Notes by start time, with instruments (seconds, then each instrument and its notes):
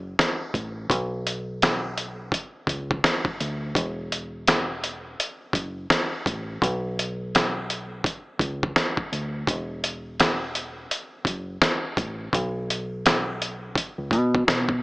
Already playing: fingered electric bass F#1
0.19 finger snap, snare, closed hi-hat
0.54 fingered electric bass A1, kick, closed hi-hat
0.90 fingered electric bass B1, kick, closed hi-hat
1.27 closed hi-hat
1.62 finger snap, snare, closed hi-hat
1.98 closed hi-hat
2.32 kick, closed hi-hat
2.67 fingered electric bass C#2, kick, closed hi-hat
2.91 kick
3.04 finger snap, snare, closed hi-hat
3.25 kick
3.40 fingered electric bass D2, closed hi-hat
3.75 fingered electric bass E1, kick, closed hi-hat
4.12 closed hi-hat
4.47 finger snap, snare, closed hi-hat
4.84 closed hi-hat
5.20 closed hi-hat
5.53 fingered electric bass F#1, kick, closed hi-hat
5.90 finger snap, snare, closed hi-hat
6.26 fingered electric bass A1, kick, closed hi-hat
6.62 fingered electric bass B1, kick, closed hi-hat
6.99 closed hi-hat
7.35 finger snap, snare, closed hi-hat
7.70 closed hi-hat
8.04 kick, closed hi-hat
8.39 fingered electric bass C#2, kick, closed hi-hat
8.63 kick
8.76 finger snap, snare, closed hi-hat
8.97 kick
9.12 fingered electric bass D2, closed hi-hat
9.47 fingered electric bass E1, kick, closed hi-hat
9.84 closed hi-hat
10.20 finger snap, snare, closed hi-hat
10.55 closed hi-hat
10.91 closed hi-hat
11.25 fingered electric bass F#1, kick, closed hi-hat
11.62 finger snap, snare, closed hi-hat
11.97 fingered electric bass A1, kick, closed hi-hat
12.33 fingered electric bass B1, kick, closed hi-hat
12.70 closed hi-hat
13.06 finger snap, snare, closed hi-hat
13.42 closed hi-hat
13.75 kick, closed hi-hat
13.98 fingered electric bass C#2
14.11 fingered electric bass B2, kick, closed hi-hat
14.35 kick
14.48 fingered electric bass B2, finger snap, snare, closed hi-hat
14.69 kick